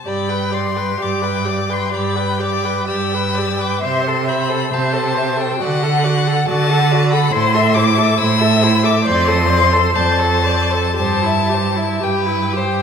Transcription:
0.05 0.89 G2 medium
0.05 0.31 G4 soft
0.05 0.31 D5 medium
0.05 0.55 B5 medium
0.29 0.53 B4 soft
0.29 0.54 G5 soft
0.51 0.78 G4 soft
0.51 0.78 D5 soft
0.51 1.03 C6 medium
0.77 1.00 B4 soft
0.77 1.00 G5 soft
1.00 1.83 G2 medium
1.00 1.24 G4 medium
1.00 1.25 D5 soft
1.00 1.75 D6 medium
1.22 1.47 B4 soft
1.22 1.48 G5 medium
1.45 1.71 G4 soft
1.45 1.72 D5 soft
1.70 1.93 B4 soft
1.70 1.92 G5 soft
1.70 1.96 C6 medium
1.93 2.78 G2 medium
1.93 2.18 G4 medium
1.93 2.18 D5 soft
1.93 2.42 B5 medium
2.16 2.41 B4 soft
2.16 2.42 G5 soft
2.39 2.67 G4 soft
2.39 2.65 D5 soft
2.39 2.87 D6 medium
2.64 2.88 B4 soft
2.64 2.86 G5 soft
2.87 3.72 G2 medium
2.87 3.16 G4 medium
2.87 3.13 D5 soft
2.87 3.63 E6 medium
3.12 3.40 B4 soft
3.12 3.36 G5 soft
3.35 3.61 G4 soft
3.35 3.58 D5 medium
3.56 3.82 B4 soft
3.56 3.80 G5 soft
3.61 3.83 D6 medium
3.81 4.62 C3 medium
3.81 4.09 C5 medium
3.81 4.03 E5 medium
3.81 4.30 C6 medium
4.02 4.27 C5 medium
4.08 4.29 A4 medium
4.25 4.51 C5 soft
4.25 4.50 E5 medium
4.25 4.75 B5 medium
4.49 4.71 A4 medium
4.49 4.70 C5 medium
4.71 5.51 C3 medium
4.71 4.95 C5 medium
4.71 4.95 E5 medium
4.71 5.42 A5 medium
4.93 5.16 A4 medium
4.93 5.19 C5 medium
5.15 5.39 C5 medium
5.15 5.41 E5 medium
5.37 5.58 A4 medium
5.37 5.60 C5 medium
5.37 5.63 G5 medium
5.59 6.38 D3 medium
5.59 5.85 F#4 medium
5.59 5.85 D5 medium
5.59 6.48 F#5 loud
5.83 6.06 A4 medium
5.83 6.05 F#5 medium
6.04 6.29 F#4 medium
6.04 6.28 D5 medium
6.27 6.48 A4 medium
6.27 6.48 F#5 medium
6.46 7.24 D3 medium
6.46 6.72 F#4 medium
6.46 6.70 D5 medium
6.46 7.11 A5 loud
6.68 6.94 A4 medium
6.68 6.93 F#5 medium
6.92 7.15 F#4 medium
6.92 7.12 D5 medium
7.11 7.33 A4 medium
7.11 7.32 F#5 medium
7.11 7.34 B5 medium
7.32 8.10 A2 medium
7.32 7.56 E4 medium
7.32 7.56 C5 medium
7.32 7.76 C6 loud
7.55 7.77 A4 medium
7.55 7.78 E5 medium
7.75 7.99 E4 medium
7.75 7.99 C5 medium
7.75 8.20 D6 loud
7.98 8.18 A4 medium
7.98 8.18 E5 medium
8.18 8.97 A2 medium
8.18 8.43 E4 medium
8.18 8.42 C5 medium
8.18 8.87 E6 loud
8.40 8.65 A4 medium
8.40 8.63 E5 medium
8.61 8.85 E4 medium
8.61 8.85 C5 medium
8.83 9.04 A4 medium
8.83 9.04 E5 medium
8.83 9.08 D6 loud
9.04 9.86 F2 medium
9.04 9.30 C5 medium
9.04 9.29 D5 medium
9.04 9.97 C6 loud
9.27 9.51 A4 medium
9.27 9.49 C5 medium
9.48 9.74 C5 medium
9.48 9.74 D5 medium
9.72 9.94 A4 medium
9.72 9.94 C5 medium
9.95 10.86 F2 medium
9.95 10.20 C5 medium
9.95 10.20 D5 medium
9.95 10.96 A5 loud
10.19 10.46 A4 medium
10.19 10.47 C5 medium
10.44 10.71 C5 medium
10.44 10.73 D5 medium
10.70 10.96 A4 medium
10.70 10.98 C5 medium
10.96 11.92 G2 medium
10.96 11.24 G4 medium
10.96 12.05 A5 loud
11.00 11.27 C5 medium
11.22 11.51 E4 medium
11.22 11.55 E5 medium
11.49 11.77 G4 medium
11.54 11.79 C5 soft
11.76 12.01 E4 medium
11.76 12.04 E5 medium
12.02 12.82 G2 medium
12.02 12.28 G4 medium
12.02 12.58 B4 medium
12.02 12.82 G5 medium
12.26 12.55 E4 soft
12.53 12.82 G4 medium
12.53 12.82 C5 medium

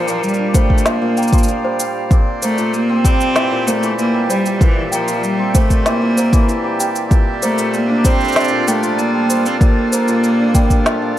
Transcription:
0.00 4.07 A#2 medium
0.00 0.25 F3 medium
0.00 0.85 F3 medium
0.00 0.54 G3 medium
0.00 1.17 A#3 medium
0.00 0.39 D4 medium
0.00 0.55 C5 medium
0.00 3.65 C5 medium
0.00 9.11 D5 medium
0.00 2.11 F5 medium
0.00 1.18 G5 medium
0.08 1.01 A#2 medium
0.08 shaker soft
0.23 0.56 G3 medium
0.23 shaker soft
0.28 shaker soft
0.34 shaker soft
0.39 4.12 D4 medium
0.54 1.64 G3 medium
0.54 0.87 A3 medium
0.54 0.70 C5 medium
0.54 kick loud
0.54 shaker medium
0.70 kick medium
0.78 shaker soft
0.85 1.32 F3 medium
0.85 1.79 A#3 medium
0.85 snare medium
0.85 shaker soft
1.02 2.10 A#2 medium
1.17 2.42 A#3 medium
1.17 1.32 G5 medium
1.17 shaker soft
1.22 shaker soft
1.28 shaker soft
1.33 1.48 F3 medium
1.33 kick loud
1.33 shaker medium
1.38 shaker medium
1.43 shaker medium
1.48 2.16 F3 medium
1.48 shaker soft
1.64 1.79 G3 medium
1.64 1.79 C5 medium
1.80 2.16 G3 medium
1.80 1.95 G5 medium
1.80 shaker medium
2.11 2.57 A#2 medium
2.11 8.43 C4 medium
2.11 kick loud
2.11 shaker soft
2.42 2.75 A3 medium
2.42 3.67 A#3 medium
2.42 2.57 C5 medium
2.42 shaker medium
2.58 3.50 A#2 medium
2.58 shaker soft
2.74 3.07 A#3 loud
2.74 8.82 G4 medium
2.74 shaker soft
2.89 5.39 C4 medium
3.05 4.13 G3 medium
3.05 3.69 C4 loud
3.05 3.20 G5 medium
3.05 kick medium
3.05 shaker medium
3.21 shaker soft
3.34 3.57 E3 medium
3.34 8.51 E5 medium
3.34 snare medium
3.34 shaker soft
3.52 4.60 A#2 medium
3.67 3.98 A3 medium
3.67 4.92 A#3 medium
3.67 3.82 C5 medium
3.67 shaker medium
3.83 3.98 E3 medium
3.83 shaker soft
3.99 4.66 E3 medium
3.99 4.28 A#3 medium
3.99 shaker soft
4.14 4.29 G3 medium
4.30 4.63 G3 medium
4.30 5.54 G3 medium
4.30 4.45 C5 medium
4.30 shaker medium
4.46 shaker soft
4.61 5.07 A#2 medium
4.61 4.92 E3 loud
4.61 kick loud
4.61 shaker soft
4.92 5.25 F3 medium
4.92 6.17 A#3 medium
4.92 5.07 G5 medium
4.92 shaker medium
5.08 6.01 A#2 medium
5.08 shaker soft
5.23 5.56 G3 medium
5.23 shaker soft
5.39 9.39 C4 medium
5.55 6.63 G3 medium
5.55 5.88 A3 medium
5.55 5.70 C5 medium
5.55 kick medium
5.55 shaker medium
5.70 kick medium
5.70 shaker soft
5.86 6.07 E3 medium
5.86 6.80 A#3 medium
5.86 snare medium
5.86 shaker soft
6.02 7.10 A#2 medium
6.17 7.42 A#3 medium
6.17 6.32 C5 medium
6.17 shaker medium
6.33 6.48 E3 loud
6.33 kick loud
6.33 shaker soft
6.49 7.16 E3 medium
6.49 shaker soft
6.64 6.79 G3 medium
6.80 7.16 G3 medium
6.80 6.95 G5 medium
6.80 shaker medium
6.96 shaker soft
7.11 7.57 A#2 medium
7.11 11.19 G3 medium
7.11 kick loud
7.11 shaker soft
7.42 7.76 A3 medium
7.42 8.67 A#3 medium
7.42 7.57 C5 medium
7.42 shaker medium
7.58 8.51 A#2 medium
7.58 shaker soft
7.74 8.07 A#3 medium
7.74 shaker soft
7.86 11.19 D4 medium
7.86 10.39 D4 medium
8.05 9.13 G3 medium
8.05 8.69 C4 loud
8.05 8.20 C5 medium
8.05 kick medium
8.05 shaker medium
8.21 11.19 A4 medium
8.21 shaker soft
8.24 shaker soft
8.28 shaker soft
8.32 8.82 F3 medium
8.32 snare medium
8.32 shaker soft
8.36 shaker soft
8.40 shaker soft
8.44 shaker soft
8.48 9.60 A#2 medium
8.48 shaker soft
8.60 11.19 F4 medium
8.67 9.00 A3 medium
8.67 9.92 A#3 medium
8.67 8.82 G5 medium
8.67 shaker medium
8.83 8.98 F3 medium
8.83 shaker soft
8.99 10.85 F3 medium
8.99 9.47 A#3 medium
8.99 shaker soft
9.14 9.29 G3 medium
9.30 10.54 G3 medium
9.30 9.45 C5 medium
9.30 shaker medium
9.46 9.61 C4 loud
9.46 shaker soft
9.61 10.07 A#2 medium
9.61 11.19 A#3 loud
9.61 kick loud
9.61 shaker soft
9.92 11.19 A#3 medium
9.92 10.07 C5 medium
9.92 shaker medium
10.08 11.01 A#2 medium
10.08 shaker soft
10.24 shaker soft
10.39 11.17 D4 medium
10.55 11.19 G3 medium
10.55 10.70 G5 medium
10.55 kick medium
10.55 shaker medium
10.70 kick medium
10.70 shaker soft
10.86 11.19 F3 medium
10.86 snare medium
10.86 shaker soft
11.02 11.19 A#2 medium

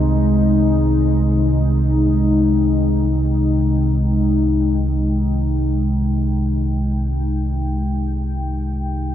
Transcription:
0.00 9.15 C2 medium
0.00 9.15 C3 medium
0.00 9.15 G#3 medium
0.00 9.15 D#4 medium
0.00 1.91 G#4 medium
0.00 9.15 G#4 medium
1.55 9.15 G5 medium

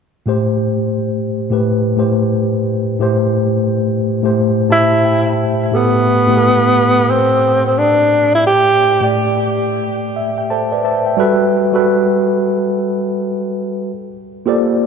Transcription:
0.26 1.32 A2 medium
0.26 1.33 A3 medium
0.26 1.34 G4 medium
0.26 1.34 C5 medium
1.50 1.92 A2 medium
1.50 1.93 A3 medium
1.50 1.93 G4 medium
1.50 1.94 B4 medium
1.96 2.90 A2 medium
1.96 2.91 A3 medium
1.96 2.91 G4 medium
1.96 2.92 C5 medium
2.99 4.05 A2 medium
2.99 4.06 A3 medium
2.99 4.06 G4 medium
2.99 4.07 C5 medium
4.22 4.65 A2 medium
4.22 4.65 A3 medium
4.22 4.66 G4 medium
4.22 4.66 C5 medium
4.69 5.63 A2 medium
4.69 5.63 A3 medium
4.69 5.35 E4 medium
4.69 5.64 G4 medium
4.69 5.64 C5 medium
4.69 5.02 A5 medium
5.05 5.24 G5 medium
5.26 5.69 E5 medium
5.72 6.20 A2 medium
5.72 6.20 A3 medium
5.72 7.12 B3 medium
5.72 6.21 G4 medium
5.72 6.21 A4 medium
6.27 7.44 A2 medium
6.27 7.44 A3 medium
6.27 7.45 G4 medium
6.27 6.34 B4 medium
6.37 7.48 A4 medium
7.11 7.65 C4 medium
7.66 7.80 C4 medium
7.78 8.33 D4 medium
8.35 8.45 E4 medium
8.47 9.10 G4 loud
9.01 10.17 A2 medium
9.01 10.17 A3 medium
9.01 10.18 G4 medium
9.01 10.17 D5 medium
10.16 10.36 E5 medium
10.38 10.49 G5 medium
10.50 10.71 A4 soft
10.50 10.70 C5 medium
10.50 10.81 A5 medium
10.72 10.83 B4 medium
10.72 10.83 D5 medium
10.85 11.05 C5 soft
10.85 11.04 E5 medium
10.85 11.16 A5 medium
11.06 11.38 E5 soft
11.06 11.38 G5 medium
11.17 11.65 G3 loud
11.17 11.66 F#4 medium
11.17 11.66 A4 medium
11.17 11.67 B4 loud
11.72 12.89 G3 medium
11.72 12.89 F#4 medium
11.72 12.90 A4 medium
11.72 12.91 B4 medium
14.46 14.87 A#3 medium
14.46 14.87 F4 medium
14.46 14.87 G4 medium
14.46 14.87 A4 medium
14.46 14.87 C5 medium
14.46 14.87 D5 medium

